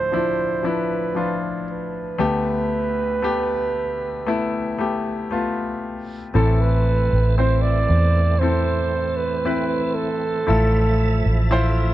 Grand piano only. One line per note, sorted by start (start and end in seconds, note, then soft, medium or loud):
0.00 2.17 D2 soft
0.00 2.16 A2 soft
0.00 0.12 F3 medium
0.00 0.13 D4 medium
0.00 0.14 E4 medium
0.12 0.61 F3 medium
0.12 0.62 D4 soft
0.12 0.63 E4 medium
0.63 1.13 F3 medium
0.63 1.14 D4 soft
0.63 1.14 E4 medium
1.15 2.14 F3 medium
1.15 2.15 D4 soft
1.15 2.15 F4 medium
2.18 6.29 D2 soft
2.18 6.30 D3 soft
2.18 3.18 A3 medium
2.18 3.18 B3 medium
2.18 3.18 G4 medium
3.22 4.21 A3 medium
3.22 4.22 B3 medium
3.22 4.22 G4 medium
4.26 4.76 A3 medium
4.26 4.76 B3 medium
4.26 4.77 E4 medium
4.78 5.28 A3 medium
4.78 5.28 B3 medium
4.78 5.29 G4 medium
5.31 6.29 A3 medium
5.31 6.30 B3 medium
5.31 6.30 F4 medium
6.34 7.86 A2 medium
6.34 7.86 E3 soft
6.34 7.32 C4 medium
6.34 7.33 E4 medium
6.34 7.33 A4 medium
7.38 8.36 C4 medium
7.38 8.36 E4 medium
7.38 8.37 C5 medium
8.41 9.39 C4 medium
8.41 9.40 E4 medium
8.41 9.40 A4 medium
9.45 10.43 C4 medium
9.45 10.43 E4 medium
9.45 10.44 B4 medium
10.47 11.94 A2 medium
10.47 11.94 A3 medium
10.47 11.46 E4 medium
10.47 11.46 F4 medium
10.47 11.46 A4 medium
11.51 11.94 E4 medium
11.51 11.94 F4 medium
11.51 11.94 C5 medium